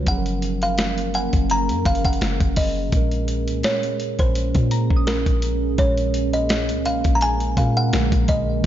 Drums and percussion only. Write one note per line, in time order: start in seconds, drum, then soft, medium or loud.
0.07 kick loud
0.07 closed hi-hat medium
0.26 closed hi-hat soft
0.42 closed hi-hat medium
0.62 closed hi-hat medium
0.78 snare loud
0.78 closed hi-hat medium
0.98 closed hi-hat medium
1.14 closed hi-hat medium
1.33 kick medium
1.33 closed hi-hat soft
1.50 closed hi-hat medium
1.69 closed hi-hat medium
1.85 kick medium
1.85 closed hi-hat medium
1.95 closed hi-hat medium
2.04 kick medium
2.04 closed hi-hat medium
2.13 closed hi-hat medium
2.21 snare loud
2.21 closed hi-hat medium
2.40 kick medium
2.40 closed hi-hat soft
2.56 kick loud
2.56 open hi-hat medium
2.92 kick loud
2.92 closed hi-hat medium
3.12 closed hi-hat soft
3.28 closed hi-hat medium
3.48 closed hi-hat medium
3.63 snare loud
3.63 closed hi-hat medium
3.83 closed hi-hat medium
4.00 closed hi-hat medium
4.19 kick medium
4.19 closed hi-hat soft
4.35 closed hi-hat medium
4.55 kick medium
4.55 closed hi-hat medium
4.71 closed hi-hat medium
4.90 kick medium
5.07 snare loud
5.07 closed hi-hat medium
5.26 kick medium
5.26 closed hi-hat soft
5.42 closed hi-hat medium
5.78 kick loud
5.78 closed hi-hat medium
5.97 closed hi-hat soft
6.14 closed hi-hat medium
6.33 closed hi-hat medium
6.49 snare loud
6.49 closed hi-hat medium
6.69 closed hi-hat medium
6.85 closed hi-hat medium
7.04 kick medium
7.04 closed hi-hat soft
7.21 closed hi-hat medium
7.40 closed hi-hat medium
7.57 kick medium
7.57 closed hi-hat medium
7.93 snare loud
7.93 closed hi-hat medium
8.12 kick medium
8.12 closed hi-hat medium
8.28 kick loud
8.28 closed hi-hat medium